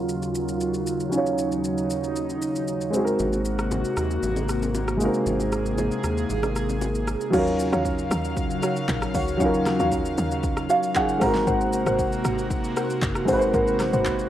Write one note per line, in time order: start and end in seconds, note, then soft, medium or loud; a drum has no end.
0.00 2.90 D#2 medium
0.00 2.90 C#3 medium
0.00 1.07 F#3 medium
0.00 2.90 F#3 medium
0.00 1.08 C#4 medium
0.00 1.09 D#4 medium
0.00 1.10 F4 medium
0.00 1.11 F4 medium
0.00 1.11 A#4 medium
0.09 shaker medium
0.22 shaker medium
0.35 shaker medium
0.48 shaker medium
0.61 shaker medium
0.74 shaker soft
0.87 shaker medium
1.00 shaker soft
1.09 2.88 F#3 medium
1.09 2.89 C#4 medium
1.09 2.92 D#4 medium
1.09 shaker medium
1.14 2.91 D#4 medium
1.14 2.92 F4 medium
1.14 2.92 C#5 medium
1.26 shaker soft
1.38 shaker medium
1.52 shaker medium
1.64 shaker medium
1.78 shaker soft
1.90 shaker medium
2.04 shaker soft
2.16 shaker medium
2.30 shaker soft
2.42 shaker loud
2.56 shaker medium
2.68 shaker medium
2.81 shaker soft
2.90 7.29 C3 medium
2.90 4.95 G#3 medium
2.90 7.29 A#3 medium
2.90 4.96 C4 medium
2.90 4.98 F#4 medium
2.90 shaker medium
2.94 4.97 D#4 medium
2.94 4.98 F#4 medium
2.94 3.02 G#4 medium
3.04 5.02 A#4 medium
3.04 shaker soft
3.19 3.84 G#1 loud
3.19 low conga medium
3.19 shaker medium
3.33 high bongo soft
3.33 shaker soft
3.45 shaker medium
3.59 cross-stick medium
3.59 shaker medium
3.71 high bongo medium
3.71 low conga medium
3.71 shaker medium
3.85 shaker soft
3.97 4.19 D#2 loud
3.97 cross-stick medium
3.97 shaker medium
4.11 shaker soft
4.23 5.09 G#1 loud
4.23 low conga medium
4.23 shaker medium
4.36 low bongo medium
4.36 shaker soft
4.49 cross-stick medium
4.49 shaker medium
4.62 low bongo medium
4.62 shaker medium
4.75 high bongo medium
4.75 shaker medium
4.88 cross-stick medium
4.88 shaker medium
4.97 7.02 G#3 medium
4.97 5.06 A#3 medium
4.97 7.04 D#4 medium
4.97 7.31 G#4 medium
4.97 shaker medium
5.03 7.06 C4 medium
5.03 7.05 F#4 medium
5.03 7.06 A#4 medium
5.14 shaker soft
5.26 5.91 G#1 medium
5.26 low conga medium
5.26 shaker medium
5.40 high bongo soft
5.40 shaker soft
5.52 cross-stick medium
5.52 shaker medium
5.66 shaker medium
5.78 high bongo medium
5.78 low conga medium
5.78 shaker medium
5.91 shaker soft
6.04 6.26 D#2 loud
6.04 cross-stick medium
6.04 shaker medium
6.18 shaker soft
6.30 7.16 G#1 loud
6.30 low conga medium
6.30 shaker medium
6.43 cross-stick medium
6.43 low bongo medium
6.43 shaker soft
6.56 cross-stick medium
6.56 shaker medium
6.69 low bongo medium
6.69 shaker medium
6.81 high bongo medium
6.81 shaker medium
6.95 shaker soft
7.08 cross-stick medium
7.08 shaker medium
7.21 shaker soft
7.30 7.71 D#2 loud
7.30 11.17 C#3 medium
7.30 9.35 F#3 medium
7.30 11.17 F#3 medium
7.30 9.36 C#4 medium
7.30 9.37 D#4 medium
7.30 7.69 F#4 loud
7.30 7.69 C#5 medium
7.30 11.17 F5 medium
7.30 7.70 F5 loud
7.30 kick loud
7.30 crash loud
7.30 shaker medium
7.36 9.38 F4 medium
7.36 9.39 A#4 medium
7.47 shaker soft
7.59 shaker medium
7.72 8.10 D#2 loud
7.72 7.82 F#4 medium
7.72 7.82 C#5 medium
7.72 7.83 F5 medium
7.72 cross-stick loud
7.72 shaker medium
7.85 kick medium
7.85 shaker medium
7.99 shaker soft
8.11 8.61 D#2 loud
8.11 cross-stick loud
8.11 shaker loud
8.25 shaker medium
8.37 kick loud
8.37 shaker medium
8.51 shaker medium
8.62 8.73 F#4 medium
8.62 8.73 C#5 medium
8.62 8.73 F5 medium
8.62 cross-stick loud
8.62 shaker loud
8.76 shaker medium
8.89 9.14 A#1 loud
8.89 kick medium
8.89 clap loud
8.89 shaker medium
9.02 cross-stick loud
9.02 shaker medium
9.14 9.42 C#2 loud
9.14 9.38 F#4 medium
9.14 9.38 C#5 medium
9.14 9.38 F5 medium
9.14 kick loud
9.14 open hi-hat medium
9.14 shaker loud
9.28 shaker medium
9.37 9.78 D#2 loud
9.37 10.91 F#3 medium
9.37 10.92 C#4 medium
9.37 10.93 D#4 medium
9.37 9.76 F#4 medium
9.37 9.76 C#5 medium
9.37 9.77 F5 loud
9.37 kick loud
9.37 shaker medium
9.43 10.94 F4 medium
9.43 10.95 A#4 medium
9.54 shaker soft
9.66 cross-stick loud
9.66 snare medium
9.66 shaker medium
9.79 10.17 D#2 medium
9.79 9.89 F#4 medium
9.79 9.89 C#5 medium
9.79 9.90 F5 medium
9.79 shaker medium
9.92 kick medium
9.92 shaker medium
10.05 shaker soft
10.18 10.68 D#2 loud
10.18 shaker loud
10.31 shaker medium
10.44 kick loud
10.44 shaker medium
10.57 cross-stick loud
10.57 shaker medium
10.69 10.80 F#4 medium
10.69 10.80 C#5 medium
10.69 10.80 F5 medium
10.69 10.94 F5 medium
10.69 shaker loud
10.83 shaker medium
10.95 11.21 F#3 medium
10.95 11.21 C#4 medium
10.95 11.21 D#4 medium
10.95 11.22 F4 medium
10.95 11.23 G#4 medium
10.95 11.20 F#5 medium
10.95 kick medium
10.95 clap loud
10.95 shaker medium
11.09 shaker medium
11.18 11.46 G#1 loud
11.18 14.29 C3 medium
11.18 13.23 G#3 medium
11.18 14.29 A#3 medium
11.18 13.24 C4 medium
11.18 13.25 D#4 medium
11.18 14.29 F#4 medium
11.18 11.45 A#4 medium
11.18 11.45 C5 medium
11.18 11.45 F#5 medium
11.18 11.46 A#5 medium
11.18 kick loud
11.18 cross-stick loud
11.18 open hi-hat medium
11.18 shaker loud
11.24 13.26 F#4 medium
11.24 13.27 A#4 medium
11.35 snare medium
11.35 shaker medium
11.47 11.85 G#1 loud
11.47 11.83 A#4 loud
11.47 11.83 C5 medium
11.47 11.83 F#5 loud
11.47 kick loud
11.47 shaker medium
11.61 shaker soft
11.73 shaker medium
11.86 12.24 G#1 loud
11.86 11.96 A#4 medium
11.86 11.96 C5 medium
11.86 11.96 F#5 medium
11.86 cross-stick loud
11.86 shaker medium
11.99 kick medium
11.99 shaker medium
12.12 shaker soft
12.25 12.75 G#1 medium
12.25 cross-stick loud
12.25 shaker loud
12.39 shaker soft
12.51 kick loud
12.51 shaker medium
12.64 shaker medium
12.76 12.87 A#4 medium
12.76 12.87 C5 medium
12.76 12.87 F#5 medium
12.76 cross-stick loud
12.76 shaker loud
12.90 shaker medium
13.02 13.27 F#1 loud
13.02 kick medium
13.02 clap loud
13.02 shaker medium
13.15 cross-stick loud
13.15 shaker medium
13.25 13.53 G#1 medium
13.25 14.29 G#3 medium
13.25 14.29 C4 medium
13.25 14.29 D#4 medium
13.25 13.52 A#4 medium
13.25 13.52 C5 medium
13.25 13.52 F#5 medium
13.25 kick loud
13.25 open hi-hat medium
13.25 shaker loud
13.31 14.29 F#4 medium
13.31 13.37 B4 medium
13.39 14.29 C5 medium
13.39 shaker medium
13.54 13.92 G#1 loud
13.54 13.90 A#4 loud
13.54 13.90 C5 medium
13.54 13.90 F#5 loud
13.54 kick loud
13.54 shaker medium
13.67 shaker soft
13.80 cross-stick loud
13.80 snare medium
13.80 shaker loud
13.93 14.29 G#1 loud
13.93 14.03 A#4 medium
13.93 14.03 C5 medium
13.93 14.03 F#5 medium
13.93 shaker medium
14.05 kick medium
14.05 clap medium
14.05 shaker medium
14.19 shaker medium